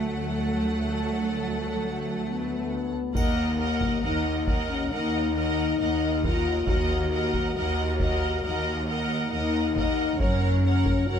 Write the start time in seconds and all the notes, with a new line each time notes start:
Already playing: D2 F#3 A3 A4 F#5
2.28 B3
3.15 D#2 A#3 A#4 D#5 F#5, taiko, triangle
3.60 A#4 D#5 F#5
3.81 taiko
4.03 D#2 D#4 A#4 D#5 F#5
4.47 A#4 D#5 F#5, taiko
4.69 C#4
4.91 D#2 D#4 A#4 D#5 F#5
5.36 A#4 D#5 F#5
5.80 D#2 A#4 D#5 F#5
6.24 F4 A#4 D#5 F#5, taiko
6.67 D#2 F#4 A#4 D#5 F#5, taiko
7.12 A#4 D#5 F#5
7.34 taiko
7.57 D#2 A#4 D#5 F#5
8.00 A#4 D#5 F#5, taiko
8.43 D#2 A#4 D#5 F#5
8.88 A#4 D#5 F#5
9.31 D#2 D#4 A#4 D#5 F#5
9.76 A#4 D#5 F#5, taiko
10.18 F#1 F#2 C#4 A#4 C#5 F#5, taiko
10.65 A#4 C#5 F#5
10.85 taiko
11.07 F#1 F#2 F#4 A#4 C#5 F#5